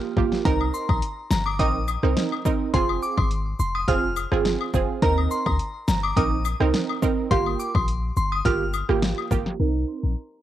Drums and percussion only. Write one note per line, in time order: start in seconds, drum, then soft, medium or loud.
0.17 kick loud
0.32 snare medium
0.45 kick loud
0.45 closed hi-hat medium
0.61 high woodblock medium
0.74 cabasa medium
0.89 kick loud
0.89 high woodblock medium
1.02 closed hi-hat medium
1.31 snare loud
1.31 cabasa medium
1.46 high woodblock medium
1.59 kick loud
1.59 closed hi-hat medium
1.88 cabasa medium
1.88 high woodblock medium
2.03 cross-stick medium
2.17 snare loud
2.17 closed hi-hat medium
2.32 high woodblock medium
2.45 kick loud
2.45 cabasa medium
2.74 kick loud
2.74 closed hi-hat medium
2.89 high woodblock medium
3.03 cabasa medium
3.17 kick loud
3.17 high woodblock medium
3.31 closed hi-hat medium
3.60 cabasa medium
3.75 high woodblock medium
3.88 kick medium
3.88 closed hi-hat medium
4.16 cabasa medium
4.16 high woodblock medium
4.32 cross-stick medium
4.45 snare loud
4.45 closed hi-hat medium
4.61 high woodblock medium
4.74 kick loud
4.74 cabasa medium
5.02 kick loud
5.02 closed hi-hat medium
5.18 high woodblock medium
5.31 cabasa medium
5.46 kick loud
5.46 high woodblock medium
5.59 closed hi-hat medium
5.88 snare loud
5.88 cabasa medium
6.03 high woodblock medium
6.17 kick loud
6.17 closed hi-hat medium
6.45 cabasa medium
6.45 high woodblock medium
6.60 cross-stick medium
6.74 snare loud
6.74 closed hi-hat medium
6.89 high woodblock medium
7.02 kick loud
7.02 cabasa medium
7.31 kick loud
7.31 closed hi-hat medium
7.46 high woodblock medium
7.60 cabasa medium
7.75 kick loud
7.75 high woodblock medium
7.88 closed hi-hat medium
8.17 cabasa medium
8.32 high woodblock medium
8.45 kick loud
8.45 closed hi-hat medium
8.74 cabasa medium
8.74 high woodblock medium
8.89 cross-stick medium
9.02 snare loud
9.02 closed hi-hat medium
9.18 high woodblock medium
9.31 kick loud
9.31 cabasa medium
9.46 snare medium